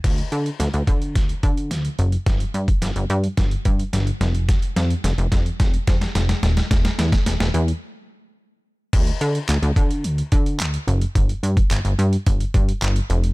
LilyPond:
<<
  \new Staff \with { instrumentName = "Analog synth bass" } { \clef bass \time 4/4 \key d \minor \tempo 4 = 108 d,8 d8 d,16 d,16 d8 d,8 d8 d,8 fis,,8 | g,,8 g,8 g,,16 g,,16 g,8 g,,8 g,8 g,,8 f,,8~ | f,,8 f,8 f,,16 f,,16 f,8 f,,8 f,8 f,,8 ees,,8 | e,,8 e,8 e,,16 e,,16 e,8 r2 |
d,8 d8 d,16 d,16 d8 d,8 d8 d,8 fis,,8 | g,,8 g,8 g,,16 g,,16 g,8 g,,8 g,8 g,,8 f,,8 | }
  \new DrumStaff \with { instrumentName = "Drums" } \drummode { \time 4/4 <cymc hh bd sn>16 hh16 hh16 hh16 <hh sn>16 hh16 <hh bd>16 hh16 <hh bd sn>16 hh16 <hh bd>16 hh16 <hh sn>16 hh16 hh16 hh16 | <hh bd sn>16 hh16 hh16 <hh bd>16 <hh sn>16 hh16 hh16 hh16 <hh bd sn>16 hh16 <hh bd>16 hh16 <hh sn>16 hh16 <hh sn>16 hh16 | <hh bd sn>16 hh16 <hh sn>16 hh16 <hh sn>16 hh16 <hh bd sn>16 hh16 <hh bd sn>16 hh16 <hh bd sn>16 <hh sn>16 <hh sn>16 <hh sn>16 <hh sn>16 <hh sn>16 | <hh bd sn>16 <hh sn>16 <hh sn>16 <hh bd sn>16 <hh sn>16 <hh sn>16 hh16 hh16 r4 r4 |
<cymc hh bd>16 hh16 hh16 hh16 <hc hh>16 hh16 <hh bd>16 hh16 hh16 hh16 <hh bd>16 hh16 <hc hh>16 hh16 hh16 hh16 | <hh bd>16 hh16 hh16 <hh bd>16 <hc hh>16 hh16 hh16 hh16 <hh bd>16 hh16 <hh bd>16 hh16 <hc hh>16 hh16 hh16 hh16 | }
>>